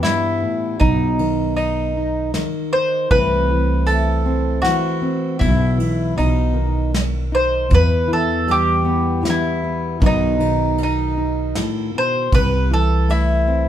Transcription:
Already playing: steel-string acoustic guitar E3 G3 B3
0.03 steel-string acoustic guitar G2, mandolin E4, snare, ride
0.42 steel-string acoustic guitar A2
0.80 upright bass B1, steel-string acoustic guitar B2, mandolin D#4, kick, ride
1.19 steel-string acoustic guitar D#3, ride
1.56 mandolin D#4, ride
1.97 steel-string acoustic guitar D#4
2.34 steel-string acoustic guitar D#3, snare, ride
2.73 steel-string acoustic guitar D#4, mandolin C5
3.11 upright bass C2, steel-string acoustic guitar C3 E3 A3 C4, mandolin B4, kick, ride
3.50 steel-string acoustic guitar E3
3.87 steel-string acoustic guitar A3, mandolin A4, ride
4.26 steel-string acoustic guitar C4
4.62 steel-string acoustic guitar E3, mandolin F#4, snare, ride
5.02 steel-string acoustic guitar C4
5.39 upright bass B1, steel-string acoustic guitar B2, mandolin E4, kick, ride
5.78 steel-string acoustic guitar E3, ride
6.16 upright bass B1, steel-string acoustic guitar B2, mandolin D#4, ride
6.54 steel-string acoustic guitar D#3
6.94 snare, ride
7.32 steel-string acoustic guitar D#4, mandolin C5
7.69 steel-string acoustic guitar E2, upright bass E2, kick, ride
7.74 mandolin B4
8.08 steel-string acoustic guitar E3
8.13 mandolin A4
8.48 steel-string acoustic guitar G3, mandolin G4, ride
8.85 steel-string acoustic guitar B3
9.23 steel-string acoustic guitar E3, snare, ride
9.30 mandolin E4
9.64 steel-string acoustic guitar B3
10.00 upright bass B1, steel-string acoustic guitar B2 D#3 B3 D#4 F#4, kick, ride
10.06 mandolin D#4
10.39 steel-string acoustic guitar D#3, ride
10.78 ride
10.83 mandolin D#4
11.18 steel-string acoustic guitar D#4
11.55 steel-string acoustic guitar A2, snare, ride
11.95 steel-string acoustic guitar B2, mandolin C5
12.32 upright bass C2, steel-string acoustic guitar C3, mandolin B4, kick, ride
12.71 steel-string acoustic guitar E3, mandolin A4
13.09 steel-string acoustic guitar A3, mandolin E4, ride
13.48 steel-string acoustic guitar C4

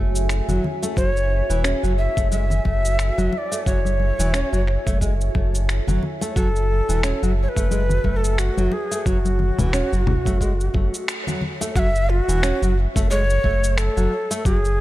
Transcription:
Already playing: analog synth bass F#1, nylon-string guitar A3, ambient pad F#4 C#5 E5 G#5
0.15 shaker
0.29 finger snap, shaker
0.48 analog synth bass F#1, nylon-string guitar F#3, high conga, low conga, shaker
0.64 low conga
0.82 nylon-string guitar A3, muted conga, shaker
0.97 analog synth bass F#1, nylon-string guitar F#3, native american-style wooden flute C#5, kick, shaker
1.17 shaker
1.50 analog synth bass E1, nylon-string guitar E3, shaker
1.64 nylon-string guitar C#4, finger snap, shaker
1.83 analog synth bass F#1, nylon-string guitar F#3, shaker
1.98 native american-style wooden flute E5
2.17 analog synth bass F#1, nylon-string guitar A3, kick, shaker
2.31 nylon-string guitar G#3, native american-style wooden flute E5, high conga, shaker
2.50 low conga, shaker
2.65 analog synth bass F#1, nylon-string guitar A3, kick, muted conga, high conga
2.85 shaker
2.99 finger snap, shaker
3.18 analog synth bass F#1, nylon-string guitar F#3, muted conga, high conga, shaker
3.33 native american-style wooden flute E5, muted conga
3.38 native american-style wooden flute D5
3.52 nylon-string guitar A3, shaker
3.66 analog synth bass F#1, nylon-string guitar F#3, native american-style wooden flute C#5, kick, shaker
3.85 high conga, shaker
4.00 high conga
4.19 analog synth bass E1, nylon-string guitar E3, muted conga, shaker
4.34 nylon-string guitar C#4, finger snap, shaker
4.53 analog synth bass F#1, nylon-string guitar F#3, shaker
4.67 finger snap
4.86 analog synth bass F#1, nylon-string guitar A3, kick, high conga, shaker
5.01 nylon-string guitar G#3, kick, shaker
5.21 shaker
5.35 analog synth bass F#1, nylon-string guitar A3, kick, muted conga, high conga
5.55 shaker
5.69 finger snap, shaker
5.87 analog synth bass F#1, nylon-string guitar F#3, high conga, low conga, shaker
6.03 low conga
6.21 nylon-string guitar A3, muted conga, shaker
6.36 analog synth bass F#1, nylon-string guitar F#3, native american-style wooden flute A4, kick, shaker
6.56 shaker
6.89 analog synth bass E1, nylon-string guitar E3, shaker
7.03 nylon-string guitar C#4, finger snap, shaker
7.23 analog synth bass F#1, nylon-string guitar F#3, shaker
7.42 native american-style wooden flute C#5
7.49 native american-style wooden flute B4
7.56 analog synth bass F#1, nylon-string guitar A3, kick, shaker
7.71 nylon-string guitar G#3, high conga, shaker
7.89 low conga, shaker
8.04 analog synth bass F#1, nylon-string guitar A3, kick, muted conga, high conga
8.16 native american-style wooden flute A4
8.24 shaker
8.38 native american-style wooden flute F#4, finger snap, shaker
8.57 analog synth bass F#1, nylon-string guitar F#3, muted conga, high conga, shaker
8.72 native american-style wooden flute G#4, muted conga
8.91 nylon-string guitar A3, shaker
9.06 analog synth bass F#1, nylon-string guitar F#3, native american-style wooden flute F#4, kick, shaker
9.25 high conga, shaker
9.39 high conga, low conga
9.59 analog synth bass E1, nylon-string guitar E3, muted conga, low conga, shaker
9.73 nylon-string guitar C#4, finger snap, shaker
9.92 analog synth bass F#1, nylon-string guitar F#3, shaker
10.07 finger snap, low conga
10.25 analog synth bass F#1, nylon-string guitar A3, kick, high conga, shaker
10.41 nylon-string guitar G#3, kick, shaker
10.61 shaker
10.74 analog synth bass F#1, nylon-string guitar A3, kick, muted conga, high conga
10.94 shaker
11.08 finger snap, shaker
11.27 nylon-string guitar F#3, high conga, low conga, shaker
11.41 low conga
11.61 nylon-string guitar A3, muted conga, shaker
11.75 analog synth bass F#1, nylon-string guitar F#3, native american-style wooden flute E5 F#5, kick, shaker
11.95 shaker
12.10 native american-style wooden flute F#4
12.28 analog synth bass E1, nylon-string guitar E3, shaker
12.43 nylon-string guitar C#4, finger snap, shaker
12.62 analog synth bass F#1, nylon-string guitar F#3, shaker
12.96 analog synth bass F#1, nylon-string guitar A3, kick, shaker
13.11 nylon-string guitar G#3, native american-style wooden flute C#5, shaker
13.30 shaker
13.44 analog synth bass F#1, nylon-string guitar A3, kick
13.64 shaker
13.78 native american-style wooden flute A4, finger snap, shaker
13.97 analog synth bass F#1, nylon-string guitar F#3, shaker
14.31 nylon-string guitar A3, shaker
14.45 analog synth bass F#1, nylon-string guitar F#3, native american-style wooden flute G#4, kick, shaker
14.65 shaker

